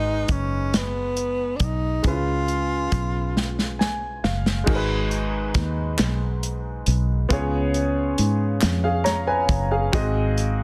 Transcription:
0.00 0.25 G#1 medium
0.00 0.70 G#2 medium
0.00 2.00 G#3 medium
0.00 0.33 D#4 medium
0.00 2.01 D#4 soft
0.00 2.02 F#4 soft
0.00 2.02 B4 medium
0.28 1.57 F#1 medium
0.28 0.78 C#4 medium
0.28 kick medium
0.28 closed hi-hat medium
0.74 1.58 B3 medium
0.74 snare medium
0.74 closed hi-hat medium
1.16 closed hi-hat soft
1.56 1.65 D4 medium
1.56 closed hi-hat medium
1.60 2.01 B1 medium
1.60 2.06 D#4 medium
1.60 kick medium
2.02 2.89 C#2 medium
2.02 3.33 C#3 medium
2.02 4.62 G#3 medium
2.02 4.64 C#4 soft
2.02 2.12 E4 soft
2.02 kick medium
2.02 closed hi-hat medium
2.07 3.78 F4 medium
2.07 4.65 B4 medium
2.12 4.68 F4 soft
2.48 closed hi-hat soft
2.92 4.20 B1 medium
2.92 kick medium
2.92 closed hi-hat medium
3.37 snare soft
3.59 snare soft
3.79 4.21 G#5 medium
3.79 snare medium
4.24 4.65 F#1 medium
4.24 4.65 F5 medium
4.24 snare medium
4.46 snare medium
4.64 5.52 G#1 loud
4.64 5.95 G#2 medium
4.64 7.25 G#3 medium
4.64 7.26 D#4 medium
4.64 7.27 F#4 medium
4.64 kick loud
4.64 crash medium
4.69 4.75 A#4 medium
4.75 7.31 B4 medium
5.11 closed hi-hat soft
5.54 5.96 D#2 medium
5.54 kick medium
5.54 snare soft
5.54 closed hi-hat medium
5.99 6.83 B1 medium
5.99 snare loud
5.99 clap loud
5.99 closed hi-hat medium
6.43 closed hi-hat medium
6.86 7.28 B1 medium
6.86 closed hi-hat medium
7.29 8.14 C#2 loud
7.29 8.58 C#3 medium
7.29 9.88 B3 medium
7.29 9.89 F4 medium
7.29 8.60 G#4 medium
7.29 kick loud
7.29 closed hi-hat medium
7.33 8.61 C#5 medium
7.74 closed hi-hat soft
8.18 8.59 G#2 medium
8.18 closed hi-hat medium
8.61 9.46 F2 medium
8.61 snare loud
8.61 clap loud
8.61 closed hi-hat medium
8.84 9.05 G#4 soft
8.84 9.05 F5 medium
9.04 9.26 C#5 medium
9.04 9.26 A#5 medium
9.04 snare soft
9.04 closed hi-hat medium
9.27 9.69 B4 medium
9.27 9.69 G#5 medium
9.49 9.90 F#1 medium
9.49 kick medium
9.49 closed hi-hat medium
9.71 9.92 G#4 medium
9.71 10.13 F5 medium
9.92 10.63 G#1 loud
9.92 10.63 G#2 medium
9.92 10.63 C4 medium
9.92 10.63 F#4 medium
9.92 10.63 G#4 medium
9.92 10.63 D#5 medium
9.92 kick loud
9.92 closed hi-hat medium
10.38 closed hi-hat soft

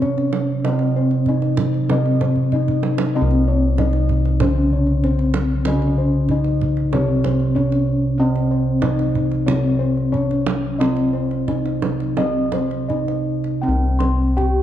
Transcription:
0.00 0.63 C3 medium
0.00 1.24 C3 medium
0.00 0.65 C#4 medium
0.00 0.10 C#4 soft
0.00 0.37 C#5 medium
0.00 kendang low soft
0.18 kendang slap soft
0.33 kendang high medium
0.64 1.89 C3 medium
0.64 1.28 C4 medium
0.64 2.50 C4 medium
0.64 1.00 D#5 medium
0.64 kendang high medium
0.79 kendang slap soft
0.96 1.31 C5 medium
1.11 kendang slap soft
1.26 1.37 C#4 soft
1.26 1.91 D#4 medium
1.26 1.63 D#5 soft
1.26 kendang low medium
1.42 kendang slap soft
1.57 kendang high medium
1.57 kendang low medium
1.74 kendang slap soft
1.89 3.15 C3 medium
1.89 3.75 C3 medium
1.89 2.53 C4 medium
1.89 2.26 D#5 medium
1.89 kendang high medium
2.06 kendang slap soft
2.21 2.57 C5 medium
2.21 kendang high soft
2.21 kendang low soft
2.36 kendang low soft
2.52 2.63 C#4 soft
2.52 3.16 D#4 medium
2.52 2.88 D#5 medium
2.52 kendang low soft
2.68 kendang low medium
2.83 kendang high medium
2.98 kendang high medium
3.15 4.42 C3 medium
3.15 3.79 C4 medium
3.15 5.01 C4 medium
3.15 3.51 D#5 medium
3.21 6.92 C2 medium
3.31 kendang slap soft
3.48 3.83 C#5 medium
3.78 3.88 C#4 soft
3.78 4.42 D#4 medium
3.78 4.14 D#5 medium
3.78 kendang high medium
3.78 kendang low medium
3.93 kendang slap soft
4.09 kendang low medium
4.25 kendang slap soft
4.40 5.67 C#3 medium
4.40 5.05 C#4 medium
4.40 4.77 C5 medium
4.40 kendang high medium
4.40 kendang low medium
4.73 5.08 C#5 medium
4.87 kendang slap soft
5.04 5.67 C4 medium
5.04 5.13 C#4 soft
5.04 5.40 C5 medium
5.04 kendang low soft
5.19 kendang slap soft
5.34 kendang high medium
5.65 6.93 C#3 medium
5.65 6.30 C#4 medium
5.65 6.02 D#5 medium
5.65 kendang high medium
5.82 kendang slap soft
5.98 6.34 C5 medium
6.29 6.39 C#4 soft
6.29 6.93 D#4 medium
6.29 6.66 D#5 medium
6.29 kendang low medium
6.44 kendang slap soft
6.61 kendang low medium
6.77 kendang slap soft
6.93 8.18 C3 medium
6.93 8.79 C3 medium
6.93 7.56 C4 medium
6.93 7.28 C#5 medium
6.93 kendang high medium
7.24 7.60 C5 medium
7.24 kendang high soft
7.24 kendang low medium
7.40 kendang slap soft
7.55 8.18 C#4 medium
7.55 7.64 C#4 soft
7.55 7.91 C#5 medium
7.55 kendang low medium
7.72 kendang slap soft
8.18 9.46 C3 medium
8.18 8.82 C4 medium
8.18 10.09 C4 medium
8.18 8.54 D#5 medium
8.36 kendang slap soft
8.51 8.86 C5 medium
8.82 8.91 C#4 medium
8.82 9.46 D#4 medium
8.82 9.18 D#5 medium
8.82 kendang high medium
8.82 kendang low medium
8.99 kendang slap soft
9.15 kendang low medium
9.32 kendang slap soft
9.46 10.78 C3 medium
9.46 11.45 C3 medium
9.46 10.13 C4 medium
9.46 9.83 C#5 medium
9.46 kendang high medium
9.46 kendang low medium
9.79 10.16 C5 medium
9.97 kendang slap soft
10.12 10.20 C#4 soft
10.12 10.80 C#4 medium
10.12 10.50 C#5 medium
10.12 kendang low medium
10.31 kendang slap soft
10.46 kendang high medium
10.79 12.18 C3 medium
10.79 12.86 C4 medium
10.79 11.49 C4 medium
10.79 11.17 D#5 medium
10.79 kendang high medium
10.96 kendang slap soft
11.13 11.52 C5 medium
11.31 kendang slap soft
11.48 11.56 C#4 medium
11.48 12.19 D#4 medium
11.48 11.87 D#5 soft
11.48 kendang low medium
11.66 kendang slap soft
11.82 kendang high medium
11.82 kendang low medium
12.00 kendang slap soft
12.17 14.33 C3 medium
12.17 13.64 C3 medium
12.17 12.90 C4 medium
12.17 12.58 D#5 medium
12.17 kendang high medium
12.52 12.94 C5 medium
12.52 kendang high medium
12.52 kendang low soft
12.71 kendang slap soft
12.89 12.98 C#4 soft
12.89 13.63 D#4 medium
12.89 13.30 D#5 medium
12.89 kendang low soft
13.08 kendang slap soft
13.44 kendang slap soft
13.62 14.63 C4 medium
13.62 14.37 C4 medium
13.62 14.04 G5 medium
13.68 14.63 C2 medium
13.99 14.41 C6 medium
13.99 kendang high medium
14.37 14.45 C#4 medium
14.37 14.63 G4 medium
14.37 14.63 G5 medium
14.37 kendang slap soft
14.37 kendang low soft

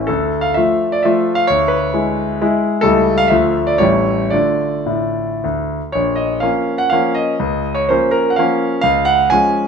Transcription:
0.00 0.10 A1 soft
0.00 0.10 C#4 soft
0.07 0.56 D2 soft
0.07 0.44 A4 medium
0.41 0.55 F5 medium
0.54 1.01 F3 soft
0.54 1.01 A3 soft
0.54 1.01 F4 soft
0.54 0.92 E5 medium
0.92 1.05 D5 medium
1.03 1.45 F3 soft
1.03 1.46 A3 soft
1.03 1.45 F4 soft
1.03 1.37 E5 medium
1.35 1.48 F5 medium
1.47 1.94 D2 soft
1.47 1.71 C#5 medium
1.68 2.62 B4 medium
1.94 2.37 G#3 soft
1.94 2.37 E4 soft
2.42 2.81 G#3 medium
2.42 2.81 E4 medium
2.81 3.30 C#2 medium
2.81 3.27 G3 soft
2.81 3.27 A3 soft
2.81 3.28 E4 soft
2.81 3.17 A4 medium
3.18 3.31 F5 medium
3.28 3.79 D2 soft
3.28 3.77 F3 soft
3.28 3.77 A3 soft
3.28 3.77 F4 soft
3.28 3.67 E5 medium
3.67 3.80 D5 medium
3.78 4.30 A1 medium
3.78 4.28 G3 soft
3.78 4.28 A3 soft
3.78 4.28 E4 soft
3.78 4.31 C#5 medium
4.30 4.71 D3 soft
4.30 4.77 A3 soft
4.30 4.77 F4 soft
4.30 5.42 D5 medium
4.86 5.26 A2 soft
5.44 5.79 D2 soft
5.92 6.42 A#1 soft
5.92 6.17 C#5 medium
6.16 6.42 D#5 medium
6.40 6.89 F3 soft
6.40 6.89 A#3 soft
6.40 6.89 C#4 soft
6.40 6.79 F5 medium
6.78 6.92 F#5 medium
6.90 7.35 F3 soft
6.90 7.36 A#3 soft
6.90 7.36 C#4 soft
6.90 7.15 F5 medium
7.15 7.75 D#5 medium
7.39 7.88 C#2 soft
7.75 7.88 C#5 medium
7.89 8.35 F3 soft
7.89 8.35 A#3 soft
7.89 8.35 C#4 soft
7.89 8.14 C5 medium
8.11 8.30 A#4 medium
8.30 8.38 F#5 medium
8.36 8.80 F3 soft
8.36 8.80 A#3 soft
8.36 8.81 C#4 soft
8.36 8.80 F5 medium
8.81 9.29 C#2 medium
8.81 9.06 F5 medium
9.05 9.30 F#5 medium
9.30 9.68 F3 soft
9.30 9.68 G#3 soft
9.30 9.68 C#4 soft
9.30 9.67 G#5 medium

